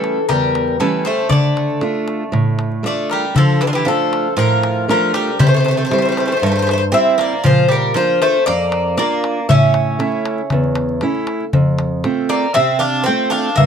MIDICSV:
0, 0, Header, 1, 5, 480
1, 0, Start_track
1, 0, Key_signature, -1, "minor"
1, 0, Tempo, 511509
1, 1225, Time_signature, 4, 2, 24, 8
1, 12819, End_track
2, 0, Start_track
2, 0, Title_t, "Bouzouki"
2, 0, Program_c, 0, 25
2, 0, Note_on_c, 0, 69, 83
2, 239, Note_off_c, 0, 69, 0
2, 268, Note_on_c, 0, 70, 99
2, 713, Note_off_c, 0, 70, 0
2, 749, Note_on_c, 0, 69, 74
2, 970, Note_off_c, 0, 69, 0
2, 983, Note_on_c, 0, 72, 86
2, 1211, Note_off_c, 0, 72, 0
2, 1215, Note_on_c, 0, 74, 93
2, 2623, Note_off_c, 0, 74, 0
2, 2683, Note_on_c, 0, 74, 76
2, 2898, Note_off_c, 0, 74, 0
2, 2918, Note_on_c, 0, 70, 67
2, 3148, Note_off_c, 0, 70, 0
2, 3152, Note_on_c, 0, 69, 83
2, 3391, Note_on_c, 0, 67, 74
2, 3396, Note_off_c, 0, 69, 0
2, 3442, Note_off_c, 0, 67, 0
2, 3445, Note_on_c, 0, 65, 66
2, 3506, Note_off_c, 0, 65, 0
2, 3521, Note_on_c, 0, 67, 76
2, 3625, Note_off_c, 0, 67, 0
2, 3641, Note_on_c, 0, 69, 82
2, 4081, Note_off_c, 0, 69, 0
2, 4116, Note_on_c, 0, 70, 92
2, 4591, Note_off_c, 0, 70, 0
2, 4602, Note_on_c, 0, 70, 85
2, 4818, Note_off_c, 0, 70, 0
2, 4838, Note_on_c, 0, 70, 83
2, 5056, Note_off_c, 0, 70, 0
2, 5069, Note_on_c, 0, 72, 97
2, 5135, Note_off_c, 0, 72, 0
2, 5147, Note_on_c, 0, 72, 66
2, 5210, Note_off_c, 0, 72, 0
2, 5222, Note_on_c, 0, 72, 74
2, 5286, Note_off_c, 0, 72, 0
2, 5297, Note_on_c, 0, 72, 67
2, 5347, Note_off_c, 0, 72, 0
2, 5359, Note_on_c, 0, 72, 73
2, 5415, Note_off_c, 0, 72, 0
2, 5427, Note_on_c, 0, 72, 57
2, 5491, Note_off_c, 0, 72, 0
2, 5502, Note_on_c, 0, 72, 69
2, 5557, Note_off_c, 0, 72, 0
2, 5568, Note_on_c, 0, 72, 58
2, 5635, Note_off_c, 0, 72, 0
2, 5650, Note_on_c, 0, 72, 65
2, 5700, Note_off_c, 0, 72, 0
2, 5711, Note_on_c, 0, 72, 56
2, 5776, Note_off_c, 0, 72, 0
2, 5800, Note_on_c, 0, 72, 62
2, 5855, Note_off_c, 0, 72, 0
2, 5871, Note_on_c, 0, 72, 55
2, 5922, Note_off_c, 0, 72, 0
2, 5933, Note_on_c, 0, 72, 70
2, 5990, Note_off_c, 0, 72, 0
2, 6001, Note_on_c, 0, 72, 57
2, 6054, Note_off_c, 0, 72, 0
2, 6065, Note_on_c, 0, 72, 72
2, 6128, Note_off_c, 0, 72, 0
2, 6153, Note_on_c, 0, 72, 63
2, 6204, Note_off_c, 0, 72, 0
2, 6215, Note_on_c, 0, 72, 76
2, 6274, Note_off_c, 0, 72, 0
2, 6296, Note_on_c, 0, 72, 73
2, 6349, Note_off_c, 0, 72, 0
2, 6359, Note_on_c, 0, 72, 74
2, 6416, Note_off_c, 0, 72, 0
2, 6512, Note_on_c, 0, 76, 93
2, 6755, Note_off_c, 0, 76, 0
2, 6763, Note_on_c, 0, 74, 94
2, 6977, Note_off_c, 0, 74, 0
2, 7001, Note_on_c, 0, 72, 93
2, 7216, Note_off_c, 0, 72, 0
2, 7240, Note_on_c, 0, 70, 92
2, 7456, Note_off_c, 0, 70, 0
2, 7475, Note_on_c, 0, 72, 96
2, 7693, Note_off_c, 0, 72, 0
2, 7712, Note_on_c, 0, 72, 87
2, 7936, Note_off_c, 0, 72, 0
2, 7939, Note_on_c, 0, 74, 104
2, 8410, Note_off_c, 0, 74, 0
2, 8422, Note_on_c, 0, 74, 84
2, 8901, Note_off_c, 0, 74, 0
2, 8905, Note_on_c, 0, 76, 88
2, 10306, Note_off_c, 0, 76, 0
2, 11538, Note_on_c, 0, 74, 84
2, 11763, Note_off_c, 0, 74, 0
2, 11775, Note_on_c, 0, 76, 96
2, 12006, Note_off_c, 0, 76, 0
2, 12010, Note_on_c, 0, 77, 100
2, 12250, Note_off_c, 0, 77, 0
2, 12254, Note_on_c, 0, 79, 85
2, 12481, Note_off_c, 0, 79, 0
2, 12492, Note_on_c, 0, 77, 98
2, 12734, Note_off_c, 0, 77, 0
2, 12738, Note_on_c, 0, 76, 89
2, 12819, Note_off_c, 0, 76, 0
2, 12819, End_track
3, 0, Start_track
3, 0, Title_t, "Steel-string acoustic guitar"
3, 0, Program_c, 1, 25
3, 0, Note_on_c, 1, 55, 47
3, 0, Note_on_c, 1, 57, 46
3, 0, Note_on_c, 1, 61, 54
3, 167, Note_off_c, 1, 55, 0
3, 168, Note_off_c, 1, 57, 0
3, 172, Note_off_c, 1, 61, 0
3, 272, Note_on_c, 1, 40, 70
3, 734, Note_off_c, 1, 40, 0
3, 746, Note_on_c, 1, 55, 44
3, 752, Note_on_c, 1, 57, 42
3, 754, Note_on_c, 1, 61, 56
3, 1130, Note_off_c, 1, 55, 0
3, 1132, Note_off_c, 1, 57, 0
3, 1132, Note_off_c, 1, 61, 0
3, 1212, Note_on_c, 1, 50, 67
3, 1684, Note_off_c, 1, 50, 0
3, 1701, Note_on_c, 1, 57, 43
3, 1708, Note_on_c, 1, 62, 42
3, 1712, Note_on_c, 1, 65, 54
3, 2088, Note_off_c, 1, 57, 0
3, 2089, Note_off_c, 1, 62, 0
3, 2093, Note_off_c, 1, 65, 0
3, 2177, Note_on_c, 1, 45, 71
3, 2647, Note_off_c, 1, 45, 0
3, 2655, Note_on_c, 1, 57, 49
3, 2659, Note_on_c, 1, 62, 38
3, 2665, Note_on_c, 1, 65, 51
3, 3043, Note_off_c, 1, 57, 0
3, 3047, Note_off_c, 1, 62, 0
3, 3048, Note_off_c, 1, 65, 0
3, 3139, Note_on_c, 1, 50, 64
3, 3608, Note_off_c, 1, 50, 0
3, 3617, Note_on_c, 1, 57, 47
3, 3620, Note_on_c, 1, 62, 43
3, 3628, Note_on_c, 1, 65, 58
3, 4005, Note_off_c, 1, 57, 0
3, 4005, Note_off_c, 1, 62, 0
3, 4011, Note_off_c, 1, 65, 0
3, 4098, Note_on_c, 1, 45, 73
3, 4567, Note_off_c, 1, 45, 0
3, 4583, Note_on_c, 1, 57, 51
3, 4585, Note_on_c, 1, 62, 42
3, 4593, Note_on_c, 1, 65, 50
3, 4968, Note_off_c, 1, 57, 0
3, 4969, Note_off_c, 1, 62, 0
3, 4974, Note_off_c, 1, 65, 0
3, 5060, Note_on_c, 1, 48, 74
3, 5528, Note_off_c, 1, 48, 0
3, 5541, Note_on_c, 1, 55, 46
3, 5550, Note_on_c, 1, 60, 45
3, 5554, Note_on_c, 1, 64, 53
3, 5927, Note_off_c, 1, 55, 0
3, 5932, Note_off_c, 1, 60, 0
3, 5933, Note_off_c, 1, 64, 0
3, 6025, Note_on_c, 1, 43, 70
3, 6490, Note_off_c, 1, 43, 0
3, 6494, Note_on_c, 1, 55, 48
3, 6497, Note_on_c, 1, 60, 48
3, 6504, Note_on_c, 1, 64, 50
3, 6882, Note_off_c, 1, 55, 0
3, 6883, Note_off_c, 1, 60, 0
3, 6888, Note_off_c, 1, 64, 0
3, 6982, Note_on_c, 1, 46, 72
3, 7448, Note_off_c, 1, 46, 0
3, 7461, Note_on_c, 1, 58, 51
3, 7467, Note_on_c, 1, 62, 46
3, 7472, Note_on_c, 1, 65, 58
3, 7846, Note_off_c, 1, 58, 0
3, 7850, Note_off_c, 1, 62, 0
3, 7851, Note_off_c, 1, 65, 0
3, 7951, Note_on_c, 1, 41, 76
3, 8413, Note_off_c, 1, 41, 0
3, 8418, Note_on_c, 1, 58, 50
3, 8423, Note_on_c, 1, 62, 43
3, 8431, Note_on_c, 1, 65, 55
3, 8804, Note_off_c, 1, 58, 0
3, 8807, Note_off_c, 1, 62, 0
3, 8811, Note_off_c, 1, 65, 0
3, 8903, Note_on_c, 1, 45, 69
3, 9368, Note_off_c, 1, 45, 0
3, 9374, Note_on_c, 1, 57, 49
3, 9381, Note_on_c, 1, 61, 45
3, 9381, Note_on_c, 1, 64, 53
3, 9761, Note_off_c, 1, 57, 0
3, 9765, Note_off_c, 1, 64, 0
3, 9766, Note_off_c, 1, 61, 0
3, 9873, Note_on_c, 1, 40, 67
3, 10334, Note_off_c, 1, 40, 0
3, 10342, Note_on_c, 1, 57, 51
3, 10347, Note_on_c, 1, 61, 47
3, 10348, Note_on_c, 1, 64, 51
3, 10727, Note_off_c, 1, 57, 0
3, 10727, Note_off_c, 1, 61, 0
3, 10730, Note_off_c, 1, 64, 0
3, 10823, Note_on_c, 1, 41, 72
3, 11288, Note_off_c, 1, 41, 0
3, 11298, Note_on_c, 1, 57, 50
3, 11306, Note_on_c, 1, 60, 45
3, 11308, Note_on_c, 1, 65, 50
3, 11684, Note_off_c, 1, 57, 0
3, 11689, Note_off_c, 1, 60, 0
3, 11689, Note_off_c, 1, 65, 0
3, 11789, Note_on_c, 1, 48, 74
3, 12251, Note_off_c, 1, 48, 0
3, 12269, Note_on_c, 1, 57, 46
3, 12274, Note_on_c, 1, 60, 44
3, 12274, Note_on_c, 1, 65, 50
3, 12651, Note_off_c, 1, 57, 0
3, 12652, Note_off_c, 1, 65, 0
3, 12653, Note_off_c, 1, 60, 0
3, 12749, Note_on_c, 1, 43, 71
3, 12819, Note_off_c, 1, 43, 0
3, 12819, End_track
4, 0, Start_track
4, 0, Title_t, "Bouzouki"
4, 0, Program_c, 2, 25
4, 0, Note_on_c, 2, 52, 62
4, 237, Note_off_c, 2, 52, 0
4, 273, Note_on_c, 2, 55, 79
4, 715, Note_off_c, 2, 55, 0
4, 754, Note_on_c, 2, 52, 69
4, 973, Note_off_c, 2, 52, 0
4, 1005, Note_on_c, 2, 57, 69
4, 1219, Note_off_c, 2, 57, 0
4, 1241, Note_on_c, 2, 57, 78
4, 2637, Note_off_c, 2, 57, 0
4, 2694, Note_on_c, 2, 57, 66
4, 2904, Note_off_c, 2, 57, 0
4, 2933, Note_on_c, 2, 55, 66
4, 3144, Note_off_c, 2, 55, 0
4, 3168, Note_on_c, 2, 53, 79
4, 3381, Note_off_c, 2, 53, 0
4, 3392, Note_on_c, 2, 52, 66
4, 3444, Note_off_c, 2, 52, 0
4, 3447, Note_on_c, 2, 50, 55
4, 3496, Note_off_c, 2, 50, 0
4, 3499, Note_on_c, 2, 52, 63
4, 3612, Note_on_c, 2, 53, 70
4, 3614, Note_off_c, 2, 52, 0
4, 4065, Note_off_c, 2, 53, 0
4, 4097, Note_on_c, 2, 53, 80
4, 4547, Note_off_c, 2, 53, 0
4, 4606, Note_on_c, 2, 53, 76
4, 4819, Note_off_c, 2, 53, 0
4, 4823, Note_on_c, 2, 55, 65
4, 5047, Note_off_c, 2, 55, 0
4, 5062, Note_on_c, 2, 55, 82
4, 5129, Note_off_c, 2, 55, 0
4, 5130, Note_on_c, 2, 57, 62
4, 5190, Note_off_c, 2, 57, 0
4, 5201, Note_on_c, 2, 57, 57
4, 5247, Note_off_c, 2, 57, 0
4, 5258, Note_on_c, 2, 57, 44
4, 5322, Note_off_c, 2, 57, 0
4, 5333, Note_on_c, 2, 57, 60
4, 5405, Note_off_c, 2, 57, 0
4, 5416, Note_on_c, 2, 57, 50
4, 5475, Note_off_c, 2, 57, 0
4, 5487, Note_on_c, 2, 57, 57
4, 5537, Note_off_c, 2, 57, 0
4, 5548, Note_on_c, 2, 57, 49
4, 5604, Note_off_c, 2, 57, 0
4, 5615, Note_on_c, 2, 57, 55
4, 5669, Note_off_c, 2, 57, 0
4, 5680, Note_on_c, 2, 57, 46
4, 5732, Note_off_c, 2, 57, 0
4, 5743, Note_on_c, 2, 57, 59
4, 5809, Note_off_c, 2, 57, 0
4, 5820, Note_on_c, 2, 57, 47
4, 5879, Note_off_c, 2, 57, 0
4, 5890, Note_on_c, 2, 57, 54
4, 5964, Note_off_c, 2, 57, 0
4, 5976, Note_on_c, 2, 57, 48
4, 6024, Note_off_c, 2, 57, 0
4, 6035, Note_on_c, 2, 57, 64
4, 6104, Note_off_c, 2, 57, 0
4, 6115, Note_on_c, 2, 57, 55
4, 6173, Note_off_c, 2, 57, 0
4, 6184, Note_on_c, 2, 57, 59
4, 6246, Note_off_c, 2, 57, 0
4, 6257, Note_on_c, 2, 57, 51
4, 6307, Note_off_c, 2, 57, 0
4, 6319, Note_on_c, 2, 57, 62
4, 6388, Note_off_c, 2, 57, 0
4, 6492, Note_on_c, 2, 60, 84
4, 6721, Note_off_c, 2, 60, 0
4, 6736, Note_on_c, 2, 58, 76
4, 6963, Note_off_c, 2, 58, 0
4, 6978, Note_on_c, 2, 53, 89
4, 7204, Note_off_c, 2, 53, 0
4, 7211, Note_on_c, 2, 55, 74
4, 7440, Note_off_c, 2, 55, 0
4, 7453, Note_on_c, 2, 53, 74
4, 7681, Note_off_c, 2, 53, 0
4, 7717, Note_on_c, 2, 57, 75
4, 7934, Note_off_c, 2, 57, 0
4, 7952, Note_on_c, 2, 58, 80
4, 8394, Note_off_c, 2, 58, 0
4, 8436, Note_on_c, 2, 58, 76
4, 8876, Note_off_c, 2, 58, 0
4, 8919, Note_on_c, 2, 61, 83
4, 10313, Note_off_c, 2, 61, 0
4, 11536, Note_on_c, 2, 58, 69
4, 11762, Note_off_c, 2, 58, 0
4, 11769, Note_on_c, 2, 60, 86
4, 11998, Note_off_c, 2, 60, 0
4, 12003, Note_on_c, 2, 62, 80
4, 12233, Note_on_c, 2, 60, 89
4, 12235, Note_off_c, 2, 62, 0
4, 12470, Note_off_c, 2, 60, 0
4, 12481, Note_on_c, 2, 62, 80
4, 12714, Note_off_c, 2, 62, 0
4, 12722, Note_on_c, 2, 58, 86
4, 12819, Note_off_c, 2, 58, 0
4, 12819, End_track
5, 0, Start_track
5, 0, Title_t, "Darbuka"
5, 36, Note_on_c, 9, 63, 64
5, 129, Note_off_c, 9, 63, 0
5, 279, Note_on_c, 9, 63, 67
5, 279, Note_on_c, 9, 64, 57
5, 373, Note_off_c, 9, 63, 0
5, 373, Note_off_c, 9, 64, 0
5, 518, Note_on_c, 9, 63, 73
5, 612, Note_off_c, 9, 63, 0
5, 634, Note_on_c, 9, 63, 26
5, 728, Note_off_c, 9, 63, 0
5, 756, Note_on_c, 9, 63, 63
5, 850, Note_off_c, 9, 63, 0
5, 998, Note_on_c, 9, 63, 66
5, 1091, Note_off_c, 9, 63, 0
5, 1111, Note_on_c, 9, 63, 24
5, 1205, Note_off_c, 9, 63, 0
5, 1223, Note_on_c, 9, 64, 88
5, 1317, Note_off_c, 9, 64, 0
5, 1355, Note_on_c, 9, 63, 27
5, 1449, Note_off_c, 9, 63, 0
5, 1473, Note_on_c, 9, 63, 65
5, 1567, Note_off_c, 9, 63, 0
5, 1596, Note_on_c, 9, 63, 23
5, 1690, Note_off_c, 9, 63, 0
5, 1702, Note_on_c, 9, 63, 65
5, 1796, Note_off_c, 9, 63, 0
5, 1829, Note_on_c, 9, 63, 24
5, 1923, Note_off_c, 9, 63, 0
5, 1948, Note_on_c, 9, 63, 62
5, 2042, Note_off_c, 9, 63, 0
5, 2191, Note_on_c, 9, 63, 64
5, 2191, Note_on_c, 9, 64, 56
5, 2285, Note_off_c, 9, 63, 0
5, 2285, Note_off_c, 9, 64, 0
5, 2428, Note_on_c, 9, 63, 67
5, 2522, Note_off_c, 9, 63, 0
5, 2549, Note_on_c, 9, 63, 23
5, 2643, Note_off_c, 9, 63, 0
5, 2666, Note_on_c, 9, 63, 60
5, 2760, Note_off_c, 9, 63, 0
5, 2781, Note_on_c, 9, 63, 24
5, 2875, Note_off_c, 9, 63, 0
5, 2906, Note_on_c, 9, 63, 57
5, 2999, Note_off_c, 9, 63, 0
5, 3027, Note_on_c, 9, 63, 23
5, 3121, Note_off_c, 9, 63, 0
5, 3149, Note_on_c, 9, 64, 94
5, 3243, Note_off_c, 9, 64, 0
5, 3268, Note_on_c, 9, 63, 30
5, 3361, Note_off_c, 9, 63, 0
5, 3387, Note_on_c, 9, 63, 76
5, 3481, Note_off_c, 9, 63, 0
5, 3628, Note_on_c, 9, 63, 66
5, 3722, Note_off_c, 9, 63, 0
5, 3874, Note_on_c, 9, 63, 78
5, 3968, Note_off_c, 9, 63, 0
5, 4109, Note_on_c, 9, 63, 68
5, 4203, Note_off_c, 9, 63, 0
5, 4349, Note_on_c, 9, 63, 84
5, 4443, Note_off_c, 9, 63, 0
5, 4593, Note_on_c, 9, 63, 68
5, 4687, Note_off_c, 9, 63, 0
5, 4826, Note_on_c, 9, 63, 77
5, 4920, Note_off_c, 9, 63, 0
5, 4953, Note_on_c, 9, 63, 28
5, 5047, Note_off_c, 9, 63, 0
5, 5068, Note_on_c, 9, 64, 98
5, 5162, Note_off_c, 9, 64, 0
5, 5310, Note_on_c, 9, 63, 69
5, 5404, Note_off_c, 9, 63, 0
5, 5550, Note_on_c, 9, 63, 63
5, 5644, Note_off_c, 9, 63, 0
5, 5793, Note_on_c, 9, 63, 71
5, 5886, Note_off_c, 9, 63, 0
5, 6036, Note_on_c, 9, 63, 73
5, 6130, Note_off_c, 9, 63, 0
5, 6278, Note_on_c, 9, 63, 76
5, 6372, Note_off_c, 9, 63, 0
5, 6514, Note_on_c, 9, 63, 69
5, 6608, Note_off_c, 9, 63, 0
5, 6750, Note_on_c, 9, 63, 70
5, 6844, Note_off_c, 9, 63, 0
5, 6879, Note_on_c, 9, 63, 27
5, 6972, Note_off_c, 9, 63, 0
5, 6989, Note_on_c, 9, 64, 90
5, 7083, Note_off_c, 9, 64, 0
5, 7112, Note_on_c, 9, 63, 27
5, 7206, Note_off_c, 9, 63, 0
5, 7469, Note_on_c, 9, 63, 69
5, 7563, Note_off_c, 9, 63, 0
5, 7711, Note_on_c, 9, 63, 77
5, 7804, Note_off_c, 9, 63, 0
5, 7948, Note_on_c, 9, 63, 81
5, 8041, Note_off_c, 9, 63, 0
5, 8184, Note_on_c, 9, 63, 81
5, 8277, Note_off_c, 9, 63, 0
5, 8425, Note_on_c, 9, 63, 74
5, 8519, Note_off_c, 9, 63, 0
5, 8669, Note_on_c, 9, 63, 76
5, 8763, Note_off_c, 9, 63, 0
5, 8911, Note_on_c, 9, 64, 102
5, 9005, Note_off_c, 9, 64, 0
5, 9140, Note_on_c, 9, 63, 80
5, 9234, Note_off_c, 9, 63, 0
5, 9383, Note_on_c, 9, 63, 79
5, 9477, Note_off_c, 9, 63, 0
5, 9498, Note_on_c, 9, 63, 30
5, 9592, Note_off_c, 9, 63, 0
5, 9623, Note_on_c, 9, 63, 78
5, 9717, Note_off_c, 9, 63, 0
5, 9742, Note_on_c, 9, 63, 29
5, 9836, Note_off_c, 9, 63, 0
5, 9855, Note_on_c, 9, 63, 72
5, 9855, Note_on_c, 9, 64, 73
5, 9949, Note_off_c, 9, 63, 0
5, 9949, Note_off_c, 9, 64, 0
5, 9981, Note_on_c, 9, 63, 27
5, 10075, Note_off_c, 9, 63, 0
5, 10092, Note_on_c, 9, 63, 83
5, 10186, Note_off_c, 9, 63, 0
5, 10217, Note_on_c, 9, 63, 27
5, 10311, Note_off_c, 9, 63, 0
5, 10331, Note_on_c, 9, 63, 71
5, 10425, Note_off_c, 9, 63, 0
5, 10460, Note_on_c, 9, 63, 30
5, 10554, Note_off_c, 9, 63, 0
5, 10575, Note_on_c, 9, 63, 74
5, 10669, Note_off_c, 9, 63, 0
5, 10701, Note_on_c, 9, 63, 28
5, 10795, Note_off_c, 9, 63, 0
5, 10822, Note_on_c, 9, 64, 86
5, 10915, Note_off_c, 9, 64, 0
5, 11060, Note_on_c, 9, 63, 72
5, 11153, Note_off_c, 9, 63, 0
5, 11299, Note_on_c, 9, 63, 70
5, 11393, Note_off_c, 9, 63, 0
5, 11542, Note_on_c, 9, 63, 72
5, 11636, Note_off_c, 9, 63, 0
5, 11782, Note_on_c, 9, 63, 74
5, 11875, Note_off_c, 9, 63, 0
5, 12021, Note_on_c, 9, 63, 75
5, 12115, Note_off_c, 9, 63, 0
5, 12259, Note_on_c, 9, 63, 68
5, 12352, Note_off_c, 9, 63, 0
5, 12502, Note_on_c, 9, 63, 73
5, 12596, Note_off_c, 9, 63, 0
5, 12743, Note_on_c, 9, 64, 90
5, 12819, Note_off_c, 9, 64, 0
5, 12819, End_track
0, 0, End_of_file